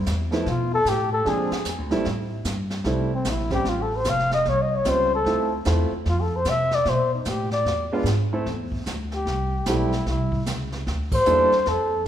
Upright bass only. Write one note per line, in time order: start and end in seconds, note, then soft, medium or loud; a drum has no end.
0.06 0.45 E2 medium
0.46 0.85 B2 medium
0.85 1.24 A2 medium
1.26 1.50 A#2 medium
1.51 muted upright bass stroke soft
1.65 1.78 F2 medium
1.78 1.91 D2 medium
1.92 2.05 A#1 medium
2.06 2.44 A2 medium
2.45 2.84 G2 medium
2.84 3.24 C2 medium
3.25 3.64 A#1 medium
3.64 4.04 A1 medium
4.05 4.45 F1 medium
4.46 4.85 C2 medium
4.86 5.24 C#2 medium
5.25 5.64 D2 medium
5.66 5.90 E2 medium
5.91 muted upright bass stroke soft
6.06 6.45 F2 medium
6.45 6.85 C3 medium
6.85 7.25 B2 medium
7.26 7.65 A2 medium
7.65 8.03 E2 medium
8.04 8.44 G#2 medium
8.46 8.85 E2 medium
8.86 9.25 D2 medium
9.26 9.65 C2 medium
9.66 10.05 B1 medium
10.06 10.45 C2 medium
10.46 10.85 C#2 medium
10.87 11.25 D2 medium
11.27 11.50 E2 medium
11.52 muted upright bass stroke soft
11.67 12.05 F2 medium